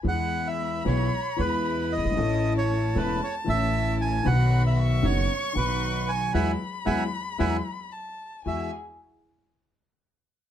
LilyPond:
<<
  \new Staff \with { instrumentName = "Violin" } { \time 4/4 \key e \major \tempo 4 = 114 b''1 | a''1 | b''4 cis'''2. | b''2. a''4 |
gis''8 r2. r8 | }
  \new Staff \with { instrumentName = "Bandoneon" } { \time 4/4 \key e \major fis''8. e''8. cis''4 b'4 dis''8~ | dis''8. cis''8. b'8 cis''8 e''4 gis''8 | fis''8. e''8. cis''4 b'4 gis''8 | <e'' fis'' gis''>8 r8 <e'' fis'' gis''>8 r8 <e'' fis'' gis''>8 r4. |
e''8 r2. r8 | }
  \new Staff \with { instrumentName = "String section" } { \time 4/4 \key e \major <gis b e'>4. <gis b e'>8 r8 <gis b e'>4. | <a cis' e'>4. <a cis' e'>8 r8 <a cis' e'>4. | <dis b fis'>4. <b dis' fis'>8 r8 <b dis' fis'>4. | <gis b e'>8 r8 <gis b e'>8 r8 <gis b e'>8 r4. |
<e' fis' gis'>8 r2. r8 | }
  \new Staff \with { instrumentName = "Grand piano" } { \clef bass \time 4/4 \key e \major << { <e, e gis b gis'>4. <b,, b, e gis b gis'>8 r8 <e, e gis b gis'>4. | <a,, a, e a cis' a'>4. <e,, e, e a cis' a'>8 r8 <a,, a, e a cis' a'>4. | <b,, b, dis fis b fis'>4. <fis,, fis, dis fis b fis'>8 r8 <b,, b, dis fis b fis'>4. | <e fis gis>8 r8 <e fis gis>8 r8 <e fis gis>8 r4. |
<e, gis e' fis'>8 r2. r8 | } \\ { r2. r8 r32 fis,,32 g,,32 gis,,32 | r1 | r1 | r1 |
r1 | } >> }
  \new Staff \with { instrumentName = "Upright bass" } { \clef bass \time 4/4 \key e \major e,4~ e,16. r32 b,,16. r8 r32 e,4~ e,32 fis,,32 g,,32 gis,,32 | a,,4~ a,,16. r32 e,,16. r8 r32 a,,4~ a,,16. r32 | b,,4~ b,,16. r32 fis,,16. r8 r32 b,,4~ b,,16. r32 | e,16. r8 r32 e,16. r8 r32 e,16. r4. r32 |
e,8 r2. r8 | }
>>